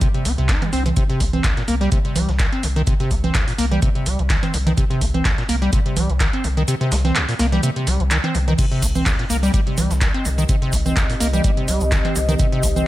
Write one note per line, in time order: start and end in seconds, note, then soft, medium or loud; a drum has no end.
0.01 0.08 C3 loud
0.01 kick loud
0.01 closed hi-hat medium
0.01 shaker medium
0.14 0.27 C3 medium
0.14 closed hi-hat soft
0.25 0.36 C2 medium
0.25 0.32 C4 medium
0.25 open hi-hat loud
0.25 shaker medium
0.38 0.57 C2 medium
0.38 0.50 C3 medium
0.38 closed hi-hat soft
0.49 0.63 D#4 loud
0.49 kick loud
0.49 snare loud
0.49 clap loud
0.49 closed hi-hat medium
0.49 shaker medium
0.62 0.71 G3 medium
0.62 clap soft
0.62 closed hi-hat soft
0.62 low conga medium
0.73 0.93 C2 medium
0.73 0.83 C4 loud
0.73 open hi-hat loud
0.73 shaker medium
0.86 0.89 C3 medium
0.86 closed hi-hat soft
0.86 low conga medium
0.97 1.04 C3 loud
0.97 kick loud
0.97 closed hi-hat medium
0.97 shaker medium
1.10 1.22 C3 loud
1.10 closed hi-hat soft
1.20 1.40 C2 loud
1.20 1.25 C4 medium
1.20 kick medium
1.20 open hi-hat loud
1.20 shaker medium
1.33 1.46 C4 medium
1.33 closed hi-hat soft
1.33 low conga medium
1.44 1.55 C2 medium
1.44 kick loud
1.44 snare loud
1.44 clap loud
1.44 closed hi-hat medium
1.44 shaker medium
1.57 1.63 A#2 medium
1.57 snare soft
1.57 closed hi-hat soft
1.68 1.88 C2 medium
1.68 1.75 A#3 loud
1.68 open hi-hat loud
1.68 shaker medium
1.81 1.90 G3 loud
1.81 snare soft
1.81 closed hi-hat soft
1.92 1.99 C3 loud
1.92 kick loud
1.92 closed hi-hat medium
1.92 shaker medium
2.05 2.17 C3 medium
2.05 closed hi-hat soft
2.16 2.26 C2 medium
2.16 2.30 G3 medium
2.16 open hi-hat loud
2.16 low conga medium
2.16 shaker medium
2.29 2.48 C2 medium
2.29 2.32 D#3 medium
2.29 snare soft
2.29 closed hi-hat soft
2.39 2.47 D#3 medium
2.39 kick loud
2.39 snare loud
2.39 clap loud
2.39 closed hi-hat medium
2.39 shaker medium
2.52 2.65 C4 medium
2.52 closed hi-hat soft
2.63 2.83 C2 medium
2.63 2.67 C3 loud
2.63 open hi-hat loud
2.63 shaker medium
2.76 2.82 D#3 loud
2.76 closed hi-hat soft
2.87 2.94 C3 loud
2.87 kick loud
2.87 closed hi-hat medium
2.87 shaker medium
3.00 3.12 C3 loud
3.00 closed hi-hat soft
3.11 3.31 C2 medium
3.11 3.15 C4 medium
3.11 kick medium
3.11 open hi-hat loud
3.11 shaker medium
3.24 3.36 C4 medium
3.24 closed hi-hat soft
3.24 low conga medium
3.34 3.45 C2 medium
3.34 kick loud
3.34 snare loud
3.34 clap loud
3.34 closed hi-hat medium
3.34 shaker medium
3.48 3.54 A#2 medium
3.48 open hi-hat medium
3.58 3.79 C2 medium
3.58 3.66 A#3 loud
3.58 snare soft
3.58 open hi-hat loud
3.58 shaker medium
3.71 3.80 G3 loud
3.71 closed hi-hat soft
3.71 low conga medium
3.82 3.89 C3 loud
3.82 kick loud
3.82 closed hi-hat medium
3.82 shaker medium
3.95 4.08 C3 medium
3.95 closed hi-hat soft
4.06 4.17 C2 medium
4.06 4.20 G3 medium
4.06 open hi-hat loud
4.06 shaker medium
4.19 4.38 C2 medium
4.19 4.23 D#3 medium
4.19 closed hi-hat soft
4.30 4.37 D#3 medium
4.30 kick loud
4.30 snare loud
4.30 clap loud
4.30 closed hi-hat medium
4.30 shaker medium
4.43 4.55 C4 medium
4.43 clap soft
4.43 closed hi-hat soft
4.43 low conga medium
4.54 4.74 C2 medium
4.54 4.58 C3 loud
4.54 open hi-hat medium
4.54 shaker medium
4.67 4.73 D#3 loud
4.67 closed hi-hat soft
4.67 low conga medium
4.77 4.85 C3 loud
4.77 kick loud
4.77 closed hi-hat medium
4.77 shaker medium
4.90 5.03 C3 loud
4.90 closed hi-hat soft
5.01 5.21 C2 loud
5.01 5.06 C4 medium
5.01 kick medium
5.01 open hi-hat medium
5.01 shaker medium
5.14 5.27 C4 medium
5.14 closed hi-hat soft
5.14 low conga medium
5.25 5.36 C2 medium
5.25 kick loud
5.25 snare loud
5.25 clap loud
5.25 closed hi-hat medium
5.25 shaker medium
5.38 5.44 A#2 medium
5.38 snare soft
5.38 closed hi-hat soft
5.49 5.69 C2 medium
5.49 5.56 A#3 loud
5.49 open hi-hat loud
5.49 shaker medium
5.62 5.71 G3 loud
5.62 snare soft
5.62 closed hi-hat soft
5.73 5.80 C3 loud
5.73 kick loud
5.73 closed hi-hat medium
5.73 shaker medium
5.86 5.98 C3 medium
5.86 closed hi-hat soft
5.97 6.07 C2 medium
5.97 6.11 G3 medium
5.97 open hi-hat loud
5.97 low conga medium
5.97 shaker medium
6.10 6.29 C2 medium
6.10 6.13 D#3 medium
6.10 closed hi-hat soft
6.20 6.28 D#3 medium
6.20 kick loud
6.20 snare loud
6.20 clap loud
6.20 closed hi-hat medium
6.20 shaker medium
6.33 6.46 C4 medium
6.33 closed hi-hat soft
6.44 6.64 C2 medium
6.44 6.48 C3 loud
6.44 open hi-hat loud
6.44 shaker medium
6.57 6.63 D#3 loud
6.57 closed hi-hat soft
6.68 6.75 C3 loud
6.68 closed hi-hat loud
6.68 shaker medium
6.81 6.93 C3 loud
6.81 closed hi-hat soft
6.92 7.12 C2 loud
6.92 6.96 C4 medium
6.92 snare loud
6.92 open hi-hat loud
6.92 shaker medium
7.05 7.17 C4 medium
7.05 snare soft
7.05 closed hi-hat soft
7.05 low conga medium
7.15 7.26 C2 medium
7.15 clap loud
7.15 closed hi-hat loud
7.15 shaker medium
7.29 7.35 A#2 medium
7.29 snare soft
7.29 open hi-hat medium
7.39 7.59 C2 medium
7.39 7.47 A#3 loud
7.39 snare loud
7.39 open hi-hat loud
7.39 shaker medium
7.52 7.61 G3 loud
7.52 snare soft
7.52 closed hi-hat soft
7.52 low conga medium
7.63 7.70 C3 loud
7.63 closed hi-hat medium
7.63 shaker medium
7.76 7.88 C3 medium
7.76 closed hi-hat soft
7.87 7.98 C2 medium
7.87 8.02 G3 medium
7.87 open hi-hat medium
7.87 shaker medium
8.00 8.19 C2 loud
8.00 8.04 D#3 medium
8.00 closed hi-hat soft
8.11 8.18 D#3 medium
8.11 clap loud
8.11 closed hi-hat medium
8.11 shaker medium
8.24 8.36 C4 medium
8.24 clap soft
8.24 closed hi-hat soft
8.24 low conga medium
8.35 8.55 C2 medium
8.35 8.39 C3 loud
8.35 open hi-hat medium
8.35 shaker medium
8.48 8.54 D#3 medium
8.48 closed hi-hat soft
8.48 low conga medium
8.58 8.66 C3 loud
8.58 12.87 C4 medium
8.58 12.87 G4 medium
8.58 12.87 D#5 medium
8.58 kick loud
8.58 closed hi-hat medium
8.58 crash medium
8.58 shaker medium
8.58 shaker soft
8.72 8.84 C3 loud
8.72 closed hi-hat soft
8.82 9.02 C2 loud
8.82 8.87 C4 medium
8.82 kick medium
8.82 open hi-hat loud
8.82 shaker medium
8.95 9.08 C4 medium
8.95 closed hi-hat soft
8.95 low conga medium
8.95 shaker soft
9.06 9.17 C2 medium
9.06 kick loud
9.06 snare loud
9.06 clap loud
9.06 closed hi-hat loud
9.06 shaker medium
9.06 shaker soft
9.19 9.25 A#2 medium
9.19 snare soft
9.19 closed hi-hat soft
9.30 9.50 C2 medium
9.30 9.37 A#3 loud
9.30 open hi-hat loud
9.30 shaker medium
9.43 9.52 G3 loud
9.43 snare soft
9.43 closed hi-hat soft
9.43 shaker medium
9.54 9.61 G3 loud
9.54 kick loud
9.54 closed hi-hat medium
9.54 shaker medium
9.54 shaker soft
9.67 9.79 C3 medium
9.67 closed hi-hat soft
9.77 9.88 C2 medium
9.77 9.92 G3 medium
9.77 open hi-hat loud
9.77 low conga medium
9.77 shaker medium
9.90 10.10 C2 medium
9.90 9.94 D#3 medium
9.90 snare soft
9.90 closed hi-hat soft
9.90 shaker medium
10.01 10.08 D#3 medium
10.01 kick loud
10.01 snare loud
10.01 clap loud
10.01 closed hi-hat medium
10.01 shaker soft
10.01 shaker medium
10.14 10.27 C4 medium
10.14 closed hi-hat soft
10.25 10.45 C2 medium
10.25 10.29 C3 loud
10.25 open hi-hat loud
10.25 shaker medium
10.38 10.44 D#3 loud
10.38 closed hi-hat soft
10.38 shaker medium
10.49 10.56 C3 loud
10.49 kick loud
10.49 closed hi-hat medium
10.49 shaker soft
10.49 shaker medium
10.62 10.74 C3 loud
10.62 closed hi-hat soft
10.72 10.93 C2 loud
10.72 10.77 C4 medium
10.72 kick medium
10.72 open hi-hat loud
10.72 shaker loud
10.72 shaker medium
10.86 10.98 C4 medium
10.86 closed hi-hat soft
10.86 low conga medium
10.86 shaker medium
10.96 11.07 C2 medium
10.96 kick loud
10.96 snare loud
10.96 clap loud
10.96 closed hi-hat medium
10.96 shaker medium
10.96 shaker soft
11.09 11.15 A#2 medium
11.09 open hi-hat medium
11.20 11.40 C2 medium
11.20 11.28 A#3 loud
11.20 snare soft
11.20 open hi-hat loud
11.20 shaker medium
11.33 11.42 G3 loud
11.33 closed hi-hat soft
11.33 low conga medium
11.33 shaker medium
11.44 11.51 G3 loud
11.44 kick loud
11.44 closed hi-hat medium
11.44 shaker soft
11.44 shaker medium
11.57 11.70 C3 medium
11.57 closed hi-hat soft
11.68 11.79 C2 medium
11.68 11.83 G3 medium
11.68 open hi-hat loud
11.68 shaker medium
11.80 12.00 C2 medium
11.80 11.85 D#3 medium
11.80 closed hi-hat soft
11.80 shaker soft
11.92 11.99 D#3 medium
11.92 kick loud
11.92 snare loud
11.92 clap loud
11.92 closed hi-hat medium
11.92 shaker soft
11.92 shaker medium
12.05 12.17 C4 medium
12.05 clap soft
12.05 closed hi-hat soft
12.05 low conga medium
12.15 12.36 C2 medium
12.15 12.20 C3 loud
12.15 open hi-hat loud
12.15 shaker loud
12.15 shaker medium
12.29 12.35 D#3 loud
12.29 closed hi-hat soft
12.29 low conga medium
12.29 shaker medium
12.38 12.47 C3 loud
12.38 kick loud
12.38 closed hi-hat medium
12.38 shaker soft
12.38 shaker medium
12.52 12.65 C3 loud
12.52 closed hi-hat soft
12.63 12.83 C2 loud
12.63 12.68 C4 medium
12.63 kick medium
12.63 open hi-hat loud
12.63 shaker loud
12.63 shaker medium
12.76 12.87 C4 medium
12.76 closed hi-hat soft
12.76 low conga medium
12.76 shaker medium